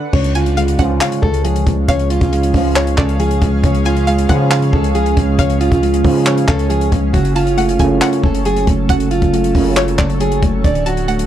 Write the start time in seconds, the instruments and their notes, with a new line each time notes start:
Already playing: ambient pad B4
0.13 808-style bass C#2, ambient pad C#3 C#4 G#4 F5, synth keys C#3, steel-string acoustic guitar C#5, kick, crash
0.24 closed hi-hat
0.35 steel-string acoustic guitar F4, synth pluck G#5, closed hi-hat
0.46 closed hi-hat
0.57 synth keys G#3, synth pluck F5, closed hi-hat
0.68 closed hi-hat
0.79 808-style bass C#2, brass ensemble G#2 C#3 F3, synth keys C#4, synth pluck F#5, kick, closed hi-hat
1.01 synth keys C#5, synth pluck F5, clap, closed hi-hat
1.12 closed hi-hat
1.22 808-style bass C#2, synth keys C#3, steel-string acoustic guitar A4, kick
1.34 closed hi-hat
1.44 synth keys F3, steel-string acoustic guitar G#4, closed hi-hat
1.56 closed hi-hat
1.67 808-style bass C#2, synth keys G#3, kick, closed hi-hat
1.88 808-style bass C#2, synth keys C#3, steel-string acoustic guitar C#5, synth pluck F5, kick, closed hi-hat
1.99 closed hi-hat
2.10 steel-string acoustic guitar F4, closed hi-hat
2.21 808-style bass C#2, kick, closed hi-hat
2.32 synth keys G#3, closed hi-hat
2.43 closed hi-hat
2.54 808-style bass C#2, brass ensemble G#2 C#3 F3, synth keys C#4, kick, open hi-hat
2.76 synth keys C#5, synth pluck C#5, clap, closed hi-hat
2.87 closed hi-hat
2.98 808-style bass C#2, synth keys C#3, steel-string acoustic guitar A4, synth pluck D5, kick, clap
3.09 closed hi-hat
3.20 synth keys F3, steel-string acoustic guitar G#4, closed hi-hat
3.31 closed hi-hat
3.42 808-style bass C#2, synth keys G#3, kick, closed hi-hat
3.64 808-style bass C#2, synth keys C#3, steel-string acoustic guitar C#5, kick, closed hi-hat
3.75 closed hi-hat
3.85 steel-string acoustic guitar F4, synth pluck G#5, closed hi-hat
3.97 closed hi-hat
4.07 synth keys G#3, synth pluck F5, closed hi-hat
4.18 closed hi-hat
4.29 brass ensemble G#2 C#3 F3, 808-style bass C#3, synth keys C#4, synth pluck F#5, kick, closed hi-hat
4.51 synth keys C#5, synth pluck F5, clap, closed hi-hat
4.62 closed hi-hat
4.73 808-style bass C#2, synth keys C#3, steel-string acoustic guitar A4, kick
4.84 closed hi-hat
4.95 synth keys F3, steel-string acoustic guitar G#4, closed hi-hat
5.06 closed hi-hat
5.17 808-style bass C#2, synth keys G#3, kick, closed hi-hat
5.39 808-style bass C#2, synth keys C#3, steel-string acoustic guitar C#5, synth pluck F5, kick, closed hi-hat
5.50 closed hi-hat
5.61 steel-string acoustic guitar F4, closed hi-hat
5.72 808-style bass C#2, kick, closed hi-hat
5.82 synth keys G#3, closed hi-hat
5.94 closed hi-hat
6.04 brass ensemble G#2 C#3 F3, 808-style bass C#3, synth keys C#4, kick, open hi-hat
6.26 synth pluck C#5, synth keys C#5, clap, closed hi-hat
6.38 closed hi-hat
6.48 808-style bass C#2, synth keys C#3, steel-string acoustic guitar A4, synth pluck F5, kick, clap
6.59 closed hi-hat
6.70 synth keys F3, steel-string acoustic guitar G#4, closed hi-hat
6.81 closed hi-hat
6.92 808-style bass C#2, synth keys G#3, kick, closed hi-hat
7.13 808-style bass F#1, synth keys C#3, ambient pad F#3 A4 A5, steel-string acoustic guitar F#4, kick, closed hi-hat
7.25 closed hi-hat
7.35 steel-string acoustic guitar F4, synth pluck A5, closed hi-hat
7.47 closed hi-hat
7.57 synth keys A3, synth pluck F#5, closed hi-hat
7.69 closed hi-hat
7.79 808-style bass F#1, brass ensemble F#2 A2 C#3, synth keys C#4, synth pluck G#5, kick, closed hi-hat
8.01 synth keys C#5, synth pluck F#5, clap, closed hi-hat
8.13 closed hi-hat
8.24 808-style bass F#1, synth keys C#3, steel-string acoustic guitar A4, kick
8.35 closed hi-hat
8.45 synth keys F#3, steel-string acoustic guitar G#4, closed hi-hat
8.56 closed hi-hat
8.67 808-style bass F#1, synth keys A3, kick, closed hi-hat
8.89 808-style bass F#1, synth keys C#3, steel-string acoustic guitar F#4, ambient pad C#5, synth pluck F#5, kick, closed hi-hat
9.00 closed hi-hat
9.11 steel-string acoustic guitar F4, closed hi-hat
9.22 808-style bass F#1, kick, closed hi-hat
9.33 synth keys A3, closed hi-hat
9.44 closed hi-hat
9.55 808-style bass F#1, brass ensemble F#2 A2 C#3, synth keys C#4, kick, open hi-hat
9.77 synth pluck C#5, synth keys C#5, clap, closed hi-hat
9.88 closed hi-hat
9.98 808-style bass F#1, synth keys C#3, steel-string acoustic guitar A4, synth pluck D5, kick, clap
10.10 closed hi-hat
10.20 synth keys F#3, steel-string acoustic guitar G#4, closed hi-hat
10.32 closed hi-hat
10.42 808-style bass F#1, synth keys A3, kick, closed hi-hat
10.64 808-style bass D1, synth keys D3, ambient pad D3 D4 A4 F#5, steel-string acoustic guitar D5, kick, closed hi-hat
10.75 closed hi-hat
10.86 steel-string acoustic guitar F#4, synth pluck A5, closed hi-hat
10.97 closed hi-hat
11.08 synth keys A3, synth pluck F#5, closed hi-hat
11.19 closed hi-hat